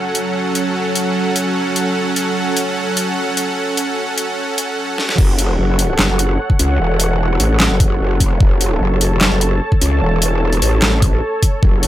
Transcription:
0.00 5.14 F#3 medium
0.00 5.14 C#4 medium
0.00 5.14 A4 medium
0.00 5.14 F#5 medium
0.15 closed hi-hat medium
0.55 closed hi-hat medium
0.95 closed hi-hat medium
1.36 closed hi-hat medium
1.76 closed hi-hat medium
2.16 closed hi-hat medium
2.57 closed hi-hat medium
2.97 closed hi-hat medium
3.37 closed hi-hat medium
3.77 closed hi-hat medium
4.18 closed hi-hat medium
4.58 closed hi-hat medium
4.98 snare medium
5.09 snare medium
5.18 5.57 F#1 loud
5.18 11.87 A4 medium
5.18 11.87 C#5 medium
5.18 8.39 F#5 medium
5.18 kick loud
5.18 crash loud
5.39 closed hi-hat medium
5.59 5.97 F#1 loud
5.79 open hi-hat medium
5.99 6.08 F#1 loud
5.99 snare loud
5.99 clap medium
6.09 6.38 F#1 loud
6.19 closed hi-hat medium
6.50 kick medium
6.59 6.78 C#2 loud
6.59 closed hi-hat medium
6.79 7.38 E1 loud
7.00 closed hi-hat medium
7.40 7.69 A1 loud
7.40 open hi-hat medium
7.60 snare loud
7.60 clap medium
7.71 7.99 F#1 loud
7.80 kick loud
7.80 closed hi-hat medium
8.00 8.39 F#1 loud
8.20 kick medium
8.20 closed hi-hat medium
8.40 8.79 F#1 loud
8.40 11.62 A5 medium
8.40 kick loud
8.61 closed hi-hat medium
8.81 9.20 F#1 loud
9.01 open hi-hat medium
9.21 9.30 F#1 medium
9.21 snare loud
9.21 clap medium
9.32 9.60 F#1 loud
9.41 closed hi-hat medium
9.72 kick medium
9.81 10.00 C#2 loud
9.81 closed hi-hat medium
10.02 10.60 E1 loud
10.22 closed hi-hat medium
10.53 closed hi-hat soft
10.62 10.81 A1 loud
10.62 open hi-hat medium
10.82 11.21 A1 medium
10.82 snare loud
10.82 clap medium
11.02 kick loud
11.02 closed hi-hat medium
11.43 kick medium
11.43 closed hi-hat medium
11.63 11.87 F#1 loud
11.63 11.87 F#5 medium
11.63 kick loud
11.83 closed hi-hat medium

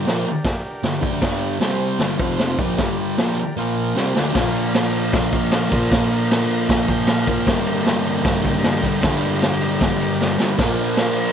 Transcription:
0.00 1.57 D4 medium
0.00 1.58 G4 medium
0.00 1.59 A#4 medium
0.06 0.25 A#2 medium
0.06 0.25 F3 medium
0.06 0.25 A#3 medium
0.06 snare loud
0.06 open hi-hat medium
0.45 kick loud
0.45 snare loud
0.45 open hi-hat medium
0.83 0.99 G2 medium
0.83 0.99 D3 medium
0.83 snare loud
0.83 open hi-hat medium
1.01 1.21 D3 medium
1.01 1.22 A3 loud
1.01 1.22 D4 loud
1.01 kick loud
1.21 1.61 G2 medium
1.21 1.60 D3 medium
1.21 1.60 G3 medium
1.21 kick loud
1.21 snare loud
1.21 open hi-hat medium
1.60 1.99 C3 medium
1.60 1.99 G3 medium
1.60 2.01 C4 medium
1.60 2.01 G4 medium
1.60 2.01 C5 medium
1.60 snare medium
1.60 open hi-hat medium
1.99 2.18 G2 medium
1.99 2.19 D3 medium
1.99 2.20 G3 medium
1.99 snare loud
1.99 open hi-hat medium
2.18 2.58 F2 loud
2.18 2.58 C3 medium
2.18 2.58 F3 medium
2.18 2.58 C4 medium
2.18 2.59 F4 medium
2.18 2.59 C5 medium
2.18 kick loud
2.39 snare loud
2.39 open hi-hat medium
2.58 2.78 A#2 medium
2.58 2.79 F3 loud
2.58 2.79 A#3 loud
2.58 3.55 D4 medium
2.58 3.55 G4 medium
2.58 3.56 A#4 medium
2.58 kick loud
2.78 3.17 G2 medium
2.78 3.17 D3 medium
2.78 3.18 G3 medium
2.78 kick loud
2.78 snare loud
2.78 open hi-hat medium
3.18 3.37 A#2 medium
3.18 3.38 F3 medium
3.18 3.38 A#3 medium
3.18 snare loud
3.18 open hi-hat medium
3.57 3.95 A#2 medium
3.57 3.96 F3 medium
3.57 3.96 A#3 medium
3.57 3.96 F4 medium
3.57 3.97 A#4 medium
3.96 4.15 C3 medium
3.96 4.16 G3 loud
3.96 4.16 C4 loud
3.96 4.33 D4 medium
3.96 4.36 G4 medium
3.96 4.36 A#4 medium
3.96 snare medium
4.16 4.34 D3 medium
4.16 4.35 A3 medium
4.16 4.36 D4 loud
4.16 snare loud
4.34 5.70 A#2 medium
4.34 5.71 F3 medium
4.34 7.42 D4 medium
4.34 7.43 F4 medium
4.34 7.44 A#4 loud
4.34 kick loud
4.34 snare loud
4.34 crash loud
4.39 5.69 A#3 medium
4.55 ride medium
4.74 snare loud
4.74 ride loud
4.93 ride medium
5.13 kick loud
5.13 snare loud
5.13 ride loud
5.32 kick medium
5.32 ride medium
5.51 snare loud
5.51 ride loud
5.70 5.91 F3 medium
5.70 5.95 A#3 loud
5.70 kick medium
5.70 ride medium
5.75 5.89 A#2 medium
5.90 7.26 A#2 medium
5.90 7.27 F3 medium
5.90 kick loud
5.90 snare loud
5.90 ride loud
5.95 7.26 A#3 medium
6.11 ride medium
6.31 snare loud
6.31 ride loud
6.48 6.67 C6 medium
6.48 ride medium
6.69 6.88 A#5 medium
6.69 kick loud
6.69 snare loud
6.69 ride loud
6.88 7.07 G5 medium
6.88 kick medium
6.88 ride medium
7.07 7.27 F5 medium
7.07 snare loud
7.07 ride loud
7.26 7.46 F3 medium
7.26 10.62 A#3 loud
7.26 7.47 F5 medium
7.26 kick medium
7.26 ride medium
7.31 7.47 A#2 medium
7.46 8.81 G2 medium
7.46 8.82 D3 medium
7.46 10.53 D4 medium
7.46 10.54 G4 medium
7.46 10.55 A#4 medium
7.46 kick loud
7.46 snare loud
7.46 ride loud
7.51 8.81 G3 medium
7.67 ride medium
7.86 snare loud
7.86 ride loud
8.06 ride medium
8.25 kick loud
8.25 snare loud
8.25 ride loud
8.45 kick medium
8.45 ride medium
8.64 snare loud
8.64 ride loud
8.82 9.02 D3 medium
8.82 9.01 G3 medium
8.82 kick medium
8.82 ride medium
8.87 9.00 G2 medium
9.01 10.36 G2 medium
9.01 10.38 D3 medium
9.01 kick loud
9.01 snare loud
9.01 ride loud
9.06 10.37 G3 medium
9.23 ride medium
9.42 snare loud
9.42 ride loud
9.61 ride medium
9.81 kick loud
9.81 snare loud
9.81 ride loud
10.01 ride medium
10.21 snare medium
10.38 10.57 D3 medium
10.38 10.57 G3 loud
10.38 snare loud
10.43 10.59 G2 medium
10.57 11.32 A#2 medium
10.57 11.32 F3 medium
10.57 11.32 D4 medium
10.57 11.32 F4 medium
10.57 11.32 A#4 loud
10.57 kick loud
10.57 snare loud
10.57 crash loud
10.62 11.32 A#3 loud
10.79 ride medium
10.97 snare loud
10.97 ride loud
11.16 ride medium

